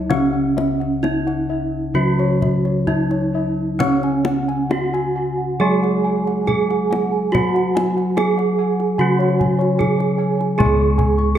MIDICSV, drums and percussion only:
0, 0, Header, 1, 2, 480
1, 0, Start_track
1, 0, Tempo, 921659
1, 57, Time_signature, 4, 2, 24, 8
1, 2457, Tempo, 883652
1, 3417, Tempo, 839161
1, 4857, Tempo, 792602
1, 6297, End_track
2, 0, Start_track
2, 0, Title_t, "Kendang"
2, 55, Note_on_c, 9, 63, 49
2, 55, Note_on_c, 9, 64, 63
2, 107, Note_off_c, 9, 63, 0
2, 107, Note_off_c, 9, 64, 0
2, 301, Note_on_c, 9, 63, 48
2, 353, Note_off_c, 9, 63, 0
2, 424, Note_on_c, 9, 62, 14
2, 476, Note_off_c, 9, 62, 0
2, 542, Note_on_c, 9, 63, 44
2, 594, Note_off_c, 9, 63, 0
2, 665, Note_on_c, 9, 62, 22
2, 717, Note_off_c, 9, 62, 0
2, 1142, Note_on_c, 9, 62, 17
2, 1194, Note_off_c, 9, 62, 0
2, 1262, Note_on_c, 9, 64, 50
2, 1314, Note_off_c, 9, 64, 0
2, 1381, Note_on_c, 9, 62, 17
2, 1433, Note_off_c, 9, 62, 0
2, 1496, Note_on_c, 9, 64, 52
2, 1548, Note_off_c, 9, 64, 0
2, 1619, Note_on_c, 9, 62, 22
2, 1671, Note_off_c, 9, 62, 0
2, 1980, Note_on_c, 9, 64, 75
2, 2032, Note_off_c, 9, 64, 0
2, 2099, Note_on_c, 9, 62, 21
2, 2151, Note_off_c, 9, 62, 0
2, 2212, Note_on_c, 9, 63, 52
2, 2264, Note_off_c, 9, 63, 0
2, 2337, Note_on_c, 9, 62, 18
2, 2389, Note_off_c, 9, 62, 0
2, 2452, Note_on_c, 9, 63, 53
2, 2506, Note_off_c, 9, 63, 0
2, 2580, Note_on_c, 9, 62, 19
2, 2634, Note_off_c, 9, 62, 0
2, 3065, Note_on_c, 9, 62, 16
2, 3120, Note_off_c, 9, 62, 0
2, 3302, Note_on_c, 9, 62, 17
2, 3356, Note_off_c, 9, 62, 0
2, 3415, Note_on_c, 9, 64, 47
2, 3472, Note_off_c, 9, 64, 0
2, 3543, Note_on_c, 9, 62, 19
2, 3600, Note_off_c, 9, 62, 0
2, 3668, Note_on_c, 9, 63, 50
2, 3726, Note_off_c, 9, 63, 0
2, 3910, Note_on_c, 9, 63, 50
2, 3910, Note_on_c, 9, 64, 59
2, 3967, Note_off_c, 9, 63, 0
2, 3967, Note_off_c, 9, 64, 0
2, 4032, Note_on_c, 9, 62, 21
2, 4089, Note_off_c, 9, 62, 0
2, 4151, Note_on_c, 9, 63, 53
2, 4208, Note_off_c, 9, 63, 0
2, 4270, Note_on_c, 9, 62, 16
2, 4327, Note_off_c, 9, 62, 0
2, 4384, Note_on_c, 9, 63, 50
2, 4441, Note_off_c, 9, 63, 0
2, 4506, Note_on_c, 9, 62, 20
2, 4563, Note_off_c, 9, 62, 0
2, 4740, Note_on_c, 9, 62, 18
2, 4798, Note_off_c, 9, 62, 0
2, 4979, Note_on_c, 9, 62, 15
2, 5039, Note_off_c, 9, 62, 0
2, 5102, Note_on_c, 9, 64, 50
2, 5163, Note_off_c, 9, 64, 0
2, 5225, Note_on_c, 9, 62, 19
2, 5286, Note_off_c, 9, 62, 0
2, 5343, Note_on_c, 9, 64, 47
2, 5404, Note_off_c, 9, 64, 0
2, 5462, Note_on_c, 9, 62, 20
2, 5523, Note_off_c, 9, 62, 0
2, 5707, Note_on_c, 9, 62, 22
2, 5767, Note_off_c, 9, 62, 0
2, 5826, Note_on_c, 9, 64, 84
2, 5886, Note_off_c, 9, 64, 0
2, 6060, Note_on_c, 9, 64, 63
2, 6120, Note_off_c, 9, 64, 0
2, 6179, Note_on_c, 9, 62, 18
2, 6239, Note_off_c, 9, 62, 0
2, 6297, End_track
0, 0, End_of_file